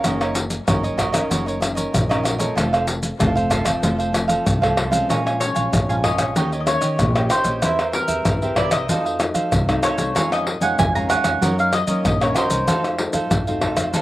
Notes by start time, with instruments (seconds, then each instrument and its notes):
0.04 upright bass F#1, nylon-string guitar F#2 D#3 A#3 C#4, cavaquinho F#4 A#4 C#5 D#5, pandeiro, tamborim, maracas, surdo
0.21 cavaquinho A#4 C#5 D#5, pandeiro, tamborim, maracas
0.35 muted cavaquinho stroke, pandeiro, maracas
0.50 pandeiro, maracas
0.67 upright bass F#1, nylon-string guitar F#2 D#3 A#3 C#4, cavaquinho F#4 A#4 C#5 D#5, pandeiro, tamborim, maracas, surdo
0.83 cavaquinho A#4 C#5 D#5, pandeiro, maracas
0.97 cavaquinho F#4 A#4 C#5 D#5, pandeiro, tamborim, maracas, surdo
1.12 nylon-string guitar D#3 A#3 C#4, cavaquinho A#4 C#5 D#5, pandeiro, tamborim, maracas
1.30 upright bass F#1, nylon-string guitar F#2, cavaquinho F#4 A#4 C#5 D#5, pandeiro, maracas, surdo
1.46 cavaquinho A#4 C#5 D#5, pandeiro, maracas
1.60 nylon-string guitar D#3 A#3 C#4, muted cavaquinho stroke, pandeiro, tamborim, maracas
1.75 cavaquinho A#4 C#5 D#5, pandeiro, maracas
1.93 upright bass A#1, nylon-string guitar F#2, pandeiro, tamborim, maracas, surdo
2.09 nylon-string guitar D#3 A#3 C#4, cavaquinho A#4 C#5 D#5, pandeiro, tamborim, maracas
2.23 cavaquinho F#4 A#4 C#5 D#5, pandeiro, tamborim, maracas
2.38 nylon-string guitar F3 A3 C4, cavaquinho A#4 C#5 D#5, pandeiro, maracas
2.55 upright bass F1, nylon-string guitar F2, cavaquinho F4 A4 C5 F5, pandeiro, tamborim, maracas, surdo
2.73 cavaquinho A4 C5 F5, pandeiro, tamborim, maracas
2.87 muted cavaquinho stroke, pandeiro, maracas
3.03 pandeiro, maracas
3.19 upright bass F1, nylon-string guitar C3 F3 A3 C4, cavaquinho F4 A4 C5 F5, pandeiro, tamborim, maracas, surdo
3.35 cavaquinho A4 C5 F5, pandeiro, maracas
3.50 cavaquinho F4 A4 C5 F5, pandeiro, tamborim, maracas, surdo
3.64 nylon-string guitar F3 A3 C4, cavaquinho A4 C5 F5, pandeiro, tamborim, maracas
3.82 upright bass F1, nylon-string guitar F2, cavaquinho F4 A4 C5 F5, pandeiro, maracas, surdo
3.99 cavaquinho A4 C5 F5, pandeiro, maracas
4.12 nylon-string guitar F3 A3 C4, muted cavaquinho stroke, pandeiro, tamborim, maracas
4.28 cavaquinho A4 C5 F5, pandeiro, maracas
4.45 upright bass C2, nylon-string guitar C3, pandeiro, tamborim, maracas, surdo
4.61 nylon-string guitar F3 A3 C4, cavaquinho A4 C5 F5, pandeiro, tamborim, maracas
4.77 cavaquinho F4 A4 C5 F5, pandeiro, tamborim
4.90 nylon-string guitar F3 G#3 C#4, cavaquinho A4 C5 F5, pandeiro, maracas
5.09 upright bass A#1, nylon-string guitar A#2, cavaquinho A#4 C#5 F5 G#5, pandeiro, tamborim, maracas, surdo
5.26 cavaquinho C#5 F5 G#5, pandeiro, tamborim, maracas
5.40 nylon-string guitar F3 G#3 C#4, mandolin C#5, muted cavaquinho stroke, pandeiro, maracas
5.55 upright bass A#1, cavaquinho C#5 F5 G#5, pandeiro, maracas
5.72 upright bass A#1, nylon-string guitar F2, pandeiro, tamborim, maracas, surdo
5.89 nylon-string guitar F3 G#3 C#4, cavaquinho C#5 F5 G#5, mandolin F5, pandeiro, maracas
6.03 cavaquinho A#4 C#5 F5 G#5, mandolin D#5, pandeiro, tamborim, surdo
6.18 upright bass A#1, cavaquinho C#5 F5 G#5, pandeiro, tamborim, maracas
6.35 upright bass D#2, nylon-string guitar D#3 A#3 C#4 G4, cavaquinho D#4 G4 C#5 D#5, pandeiro, maracas, surdo
6.52 cavaquinho G4 C#5 D#5, pandeiro, maracas
6.60 mandolin D#5
6.66 nylon-string guitar A#3 C#4 G4, mandolin C#5, muted cavaquinho stroke, pandeiro, tamborim, maracas
6.81 upright bass D#3, cavaquinho G4 C#5 D#5, pandeiro, maracas
6.98 upright bass A#1, nylon-string guitar A#2, pandeiro, tamborim, maracas, surdo
7.15 nylon-string guitar A#3 C#4 G4, cavaquinho G4 C#5 D#5, pandeiro, tamborim, maracas
7.29 cavaquinho D#4 G4 C#5 D#5, mandolin C5, pandeiro, tamborim, maracas
7.44 upright bass A#1, cavaquinho G4 C#5 D#5, pandeiro, maracas
7.62 upright bass E2, nylon-string guitar E3 A#3 C4 G4, cavaquinho E4 A#4 C5 E5, pandeiro, tamborim, maracas, surdo
7.79 cavaquinho A#4 C5 E5, pandeiro, tamborim, maracas
7.92 nylon-string guitar A#3 C4 G4, mandolin A#4, muted cavaquinho stroke, pandeiro
8.08 upright bass E2, cavaquinho A#4 C5 E5, pandeiro, maracas
8.25 upright bass E2, nylon-string guitar E3, pandeiro, tamborim, maracas, surdo
8.42 nylon-string guitar A#3 C4 G4, cavaquinho A#4 C5 E5, pandeiro, maracas
8.56 cavaquinho E4 A#4 C5 E5, mandolin D5, pandeiro, tamborim, surdo
8.71 upright bass C2, cavaquinho A#4 C5 E5, mandolin D#5, pandeiro, tamborim, maracas
8.88 upright bass F2, nylon-string guitar F3 A3 D#4 F#4, cavaquinho D#4 A4 C5 F5, pandeiro, maracas, surdo
9.05 cavaquinho A4 C5 F5, pandeiro, maracas
9.19 nylon-string guitar A3 D#4 F#4, muted cavaquinho stroke, pandeiro, tamborim, maracas
9.34 upright bass F3, cavaquinho A4 C5 F5, pandeiro, maracas
9.51 upright bass C2, nylon-string guitar C3, pandeiro, tamborim, maracas, surdo
9.68 nylon-string guitar A3 D#4 F#4, cavaquinho A4 C5 F5, pandeiro, tamborim, maracas
9.82 cavaquinho D#4 A4 C5 F5, mandolin C#5, pandeiro, tamborim, maracas
9.97 upright bass C2, cavaquinho A4 C5 F5, pandeiro, maracas
10.15 nylon-string guitar F2 D#3 G#3 C#4, upright bass F2, cavaquinho A#4 C#5 F5 G#5, pandeiro, tamborim, maracas, surdo
10.32 cavaquinho C#5 F5 G#5, mandolin D#5, pandeiro, tamborim, maracas
10.47 muted cavaquinho stroke, pandeiro
10.61 upright bass F2, nylon-string guitar D#3 G#3 C#4, cavaquinho C#5 F5 G#5, mandolin F#5, pandeiro, maracas
10.78 upright bass F2, nylon-string guitar F2, mandolin G#5, pandeiro, tamborim, maracas, surdo
10.95 nylon-string guitar D#3 G#3 C#4, cavaquinho C#5 F5 G#5, mandolin A#5, pandeiro, maracas
11.09 cavaquinho A#4 C#5 F5 G#5, mandolin F#5, pandeiro, tamborim, maracas
11.24 upright bass F2, cavaquinho C#5 F5 G#5, pandeiro, tamborim, maracas
11.41 upright bass F#2, nylon-string guitar F#2 D#3 A#3 C#4, cavaquinho F#4 A#4 C#5 D#5, pandeiro, maracas, surdo
11.58 cavaquinho A#4 C#5 D#5, mandolin F5, pandeiro, maracas
11.73 mandolin D#5, muted cavaquinho stroke, pandeiro, tamborim, maracas
11.87 nylon-string guitar D#3 A#3 C#4, upright bass F#3, cavaquinho A#4 C#5 D#5, pandeiro, maracas
12.05 upright bass A#1, nylon-string guitar F#2, mandolin D#5, pandeiro, tamborim, maracas, surdo
12.20 nylon-string guitar D#3 A#3 C#4, cavaquinho A#4 C#5 D#5, mandolin C#5, pandeiro, tamborim, maracas
12.35 cavaquinho F#4 A#4 C#5 D#5, mandolin C5, pandeiro, tamborim, maracas
12.50 upright bass C2, cavaquinho A#4 C#5 D#5, pandeiro, maracas
12.68 upright bass F2, nylon-string guitar F3 A3 D#4 F#4, cavaquinho D#4 A4 C5 F5, pandeiro, tamborim, maracas, surdo
12.84 cavaquinho A4 C5 F5, pandeiro, tamborim, maracas
12.98 nylon-string guitar A3 D#4 F#4, muted cavaquinho stroke, pandeiro
13.13 upright bass F2, cavaquinho A4 C5 F5, pandeiro, maracas
13.31 upright bass F2, nylon-string guitar C3, pandeiro, tamborim, maracas, surdo
13.47 nylon-string guitar A3 D#4 F#4, cavaquinho A4 C5 F5, pandeiro, maracas
13.61 cavaquinho D#4 A4 C5 F5, pandeiro, tamborim, surdo
13.77 upright bass F2, cavaquinho A4 C5 F5, pandeiro, tamborim, maracas
13.94 nylon-string guitar F3 A3 D#4 F#4, cavaquinho D#4 A4 C5 F5, pandeiro, maracas, surdo